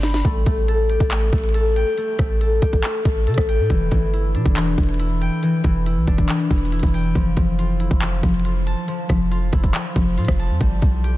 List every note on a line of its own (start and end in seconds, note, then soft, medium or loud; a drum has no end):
0.00 0.23 G1 loud
0.00 0.30 G3 medium
0.00 1.69 F4 medium
0.00 0.89 G4 medium
0.00 1.39 B5 medium
0.00 snare loud
0.00 open hi-hat medium
0.14 snare medium
0.25 0.46 A1 loud
0.25 0.46 A3 medium
0.25 kick loud
0.25 closed hi-hat medium
0.46 0.98 A1 loud
0.46 1.11 A3 medium
0.46 kick medium
0.46 closed hi-hat medium
0.68 1.54 A4 medium
0.68 closed hi-hat medium
0.90 2.62 G4 medium
0.90 closed hi-hat medium
1.00 1.31 A1 loud
1.00 kick medium
1.11 1.32 A3 medium
1.11 clap loud
1.11 closed hi-hat medium
1.33 1.85 A1 loud
1.33 1.97 A3 medium
1.33 kick loud
1.33 closed hi-hat medium
1.38 closed hi-hat medium
1.44 closed hi-hat medium
1.49 closed hi-hat medium
1.54 2.40 A4 medium
1.54 closed hi-hat medium
1.76 3.31 G5 loud
1.76 closed hi-hat medium
1.97 2.19 A3 medium
1.97 closed hi-hat medium
2.19 2.60 A1 loud
2.19 2.83 A3 medium
2.19 kick medium
2.19 cross-stick medium
2.19 closed hi-hat medium
2.41 3.27 A4 medium
2.41 closed hi-hat medium
2.62 2.83 A1 loud
2.62 4.98 G4 medium
2.62 kick loud
2.62 closed hi-hat medium
2.73 kick medium
2.84 3.05 A3 medium
2.84 clap loud
2.84 closed hi-hat medium
3.05 3.28 A1 loud
3.05 6.38 A3 medium
3.05 kick loud
3.05 closed hi-hat medium
3.27 3.37 C3 loud
3.27 5.47 A4 medium
3.27 closed hi-hat medium
3.34 3.61 A1 loud
3.34 kick medium
3.34 cross-stick medium
3.34 closed hi-hat medium
3.41 closed hi-hat soft
3.48 5.04 G5 medium
3.48 closed hi-hat medium
3.59 3.70 A2 loud
3.70 3.91 E1 loud
3.70 3.91 E3 medium
3.70 kick loud
3.70 closed hi-hat medium
3.91 4.36 G1 loud
3.91 4.55 E3 medium
3.91 kick medium
3.91 closed hi-hat medium
4.13 4.99 E4 medium
4.13 closed hi-hat medium
4.35 4.45 B2 loud
4.35 6.07 D4 medium
4.35 closed hi-hat medium
4.46 4.77 E1 loud
4.46 kick medium
4.56 4.77 E3 medium
4.56 clap loud
4.56 closed hi-hat medium
4.78 5.30 E1 loud
4.78 5.42 E3 medium
4.78 kick loud
4.78 closed hi-hat medium
4.83 closed hi-hat medium
4.89 closed hi-hat medium
4.94 closed hi-hat medium
5.00 5.86 E4 medium
5.00 closed hi-hat medium
5.21 6.76 G5 medium
5.21 closed hi-hat medium
5.43 5.63 E3 medium
5.43 closed hi-hat medium
5.64 5.98 E1 loud
5.64 6.28 E3 medium
5.64 kick medium
5.64 closed hi-hat medium
5.86 6.72 E4 medium
5.86 closed hi-hat medium
5.97 6.07 B1 loud
6.07 6.28 E1 loud
6.07 8.87 D4 medium
6.07 kick loud
6.07 closed hi-hat medium
6.18 kick medium
6.29 6.49 E3 medium
6.29 clap loud
6.29 closed hi-hat soft
6.40 closed hi-hat medium
6.51 6.82 E1 loud
6.51 7.20 E3 medium
6.51 kick loud
6.51 closed hi-hat soft
6.58 closed hi-hat medium
6.65 closed hi-hat medium
6.72 7.21 E4 medium
6.72 closed hi-hat medium
6.79 7.14 E1 loud
6.79 kick medium
6.79 closed hi-hat medium
6.87 closed hi-hat medium
6.94 8.49 G5 medium
6.94 open hi-hat medium
7.15 7.36 F1 loud
7.15 7.36 F3 medium
7.15 kick loud
7.15 closed hi-hat medium
7.37 7.89 F1 loud
7.37 8.01 F3 medium
7.37 kick medium
7.37 closed hi-hat medium
7.59 8.45 F4 medium
7.59 closed hi-hat medium
7.80 9.16 E4 medium
7.80 closed hi-hat medium
7.91 8.22 F1 loud
7.91 kick medium
8.02 8.22 F3 medium
8.02 clap loud
8.02 closed hi-hat medium
8.23 8.75 F1 loud
8.23 8.87 F3 medium
8.23 kick medium
8.23 closed hi-hat medium
8.29 closed hi-hat medium
8.34 closed hi-hat medium
8.40 closed hi-hat medium
8.45 9.31 F4 medium
8.45 closed hi-hat medium
8.67 10.11 A5 loud
8.67 closed hi-hat medium
8.88 9.08 F3 medium
8.88 closed hi-hat medium
9.09 9.51 F1 loud
9.09 9.73 F3 medium
9.09 kick medium
9.09 cross-stick medium
9.09 closed hi-hat medium
9.31 10.17 F4 loud
9.31 closed hi-hat medium
9.53 9.74 F1 loud
9.53 11.18 E4 medium
9.53 kick loud
9.53 closed hi-hat medium
9.64 kick medium
9.74 9.95 F3 medium
9.74 clap loud
9.74 closed hi-hat medium
9.96 10.19 F1 loud
9.96 10.66 F3 medium
9.96 kick medium
9.96 closed hi-hat medium
10.18 10.28 A2 loud
10.18 11.18 F4 medium
10.18 closed hi-hat medium
10.25 10.51 F1 loud
10.25 kick medium
10.25 cross-stick medium
10.25 closed hi-hat medium
10.32 closed hi-hat soft
10.39 11.18 A5 medium
10.39 closed hi-hat medium
10.50 10.60 F2 medium
10.61 10.81 G1 loud
10.61 10.81 G3 medium
10.61 kick loud
10.61 closed hi-hat medium
10.82 11.18 B1 loud
10.82 11.18 G3 medium
10.82 kick medium
10.82 closed hi-hat medium
11.04 11.18 G4 medium
11.04 closed hi-hat medium